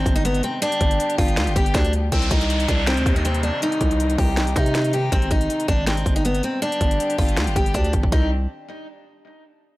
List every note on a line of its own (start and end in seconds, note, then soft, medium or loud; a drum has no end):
0.00 0.58 C3 medium
0.00 0.58 D#3 medium
0.00 0.61 G#3 medium
0.00 0.14 C4 medium
0.00 0.58 D#4 medium
0.06 0.42 G1 loud
0.06 kick loud
0.06 closed hi-hat medium
0.16 0.24 D#4 medium
0.16 closed hi-hat medium
0.25 0.42 B3 medium
0.25 closed hi-hat medium
0.34 closed hi-hat medium
0.43 0.61 C4 medium
0.43 closed hi-hat medium
0.62 2.11 D3 medium
0.62 2.11 G3 medium
0.62 2.11 B3 medium
0.62 1.15 D4 loud
0.62 2.11 G4 medium
0.62 closed hi-hat medium
0.72 closed hi-hat medium
0.81 0.99 G1 loud
0.81 kick loud
0.81 closed hi-hat medium
0.91 closed hi-hat medium
1.00 closed hi-hat loud
1.10 closed hi-hat medium
1.18 1.39 G1 loud
1.18 1.54 F4 medium
1.18 kick loud
1.18 closed hi-hat medium
1.18 open hi-hat medium
1.28 closed hi-hat medium
1.37 1.49 D2 loud
1.37 finger snap loud
1.37 snare loud
1.37 closed hi-hat medium
1.47 1.55 G1 loud
1.47 closed hi-hat medium
1.56 1.74 G1 loud
1.56 1.74 G4 medium
1.56 kick loud
1.56 closed hi-hat medium
1.66 closed hi-hat medium
1.74 2.11 D2 loud
1.74 1.92 D4 medium
1.74 finger snap medium
1.74 kick loud
1.74 snare loud
1.74 closed hi-hat medium
1.85 closed hi-hat medium
1.93 closed hi-hat medium
2.12 2.30 C2 loud
2.12 5.09 C3 medium
2.12 6.58 D#3 medium
2.12 5.09 G3 medium
2.12 2.30 C4 loud
2.12 6.58 D#4 medium
2.12 kick loud
2.12 closed hi-hat medium
2.12 downlifter medium
2.22 closed hi-hat medium
2.31 2.67 C2 loud
2.31 2.66 D#4 medium
2.31 kick loud
2.31 closed hi-hat medium
2.41 closed hi-hat medium
2.50 closed hi-hat medium
2.60 closed hi-hat medium
2.68 2.99 C2 loud
2.68 2.86 D4 medium
2.68 kick medium
2.68 closed hi-hat medium
2.87 3.14 C4 medium
2.87 finger snap loud
2.87 snare loud
2.87 closed hi-hat medium
2.97 3.06 D2 loud
2.97 closed hi-hat medium
3.06 3.51 D#2 loud
3.06 kick loud
3.06 closed hi-hat medium
3.16 3.24 D#4 medium
3.16 closed hi-hat medium
3.25 3.42 C4 medium
3.25 closed hi-hat medium
3.34 closed hi-hat medium
3.43 3.61 D4 medium
3.43 closed hi-hat medium
3.62 4.15 D#4 loud
3.62 closed hi-hat medium
3.72 closed hi-hat medium
3.81 4.17 C2 loud
3.81 kick loud
3.81 closed hi-hat medium
3.91 closed hi-hat medium
4.00 closed hi-hat medium
4.10 closed hi-hat medium
4.18 4.39 C2 loud
4.18 4.54 G4 medium
4.18 kick medium
4.18 open hi-hat medium
4.37 4.49 B1 loud
4.37 finger snap loud
4.37 snare loud
4.37 closed hi-hat medium
4.47 4.55 C2 loud
4.47 closed hi-hat medium
4.56 5.10 C3 loud
4.56 4.91 D#4 medium
4.56 kick loud
4.56 closed hi-hat medium
4.66 closed hi-hat medium
4.75 finger snap medium
4.75 snare loud
4.75 closed hi-hat medium
4.84 closed hi-hat medium
4.93 5.11 G4 medium
4.93 closed hi-hat medium
5.12 5.30 G#1 loud
5.12 6.61 C3 medium
5.12 6.61 G#3 medium
5.12 5.30 C4 medium
5.12 kick loud
5.12 closed hi-hat medium
5.22 closed hi-hat medium
5.31 5.49 G#1 loud
5.31 5.66 D#4 medium
5.31 kick loud
5.31 closed hi-hat medium
5.41 closed hi-hat medium
5.50 closed hi-hat medium
5.60 closed hi-hat medium
5.68 6.04 G#1 loud
5.68 5.86 D4 medium
5.68 kick loud
5.68 closed hi-hat medium
5.87 6.14 C4 medium
5.87 finger snap loud
5.87 snare loud
5.87 closed hi-hat medium
5.97 closed hi-hat medium
6.06 6.42 G1 loud
6.06 kick loud
6.06 closed hi-hat medium
6.16 6.24 D#4 medium
6.16 closed hi-hat medium
6.25 6.42 B3 medium
6.25 closed hi-hat medium
6.34 closed hi-hat medium
6.43 6.61 C4 medium
6.43 closed hi-hat medium
6.62 8.11 D3 medium
6.62 8.11 G3 medium
6.62 8.11 B3 medium
6.62 7.15 D4 loud
6.62 8.11 G4 medium
6.62 closed hi-hat medium
6.72 closed hi-hat medium
6.81 6.99 G1 loud
6.81 kick loud
6.81 closed hi-hat medium
6.91 closed hi-hat medium
7.00 closed hi-hat medium
7.10 closed hi-hat medium
7.18 7.39 G1 loud
7.18 7.54 F4 medium
7.18 kick loud
7.18 closed hi-hat medium
7.18 open hi-hat medium
7.28 closed hi-hat medium
7.37 7.49 D2 loud
7.37 finger snap loud
7.37 snare loud
7.37 closed hi-hat medium
7.47 7.55 G1 loud
7.47 closed hi-hat medium
7.56 7.74 G1 loud
7.56 7.74 G4 medium
7.56 kick loud
7.56 closed hi-hat medium
7.66 closed hi-hat medium
7.74 7.93 D2 loud
7.74 7.92 D4 medium
7.74 kick medium
7.74 closed hi-hat medium
7.84 closed hi-hat medium
7.93 8.11 G1 loud
7.93 kick medium
7.93 closed hi-hat medium
8.03 kick loud
8.12 8.47 C2 loud
8.12 8.30 D#3 medium
8.12 8.30 G3 medium
8.12 8.30 C4 medium
8.12 8.30 D#4 medium
8.12 8.30 G4 medium
8.12 kick loud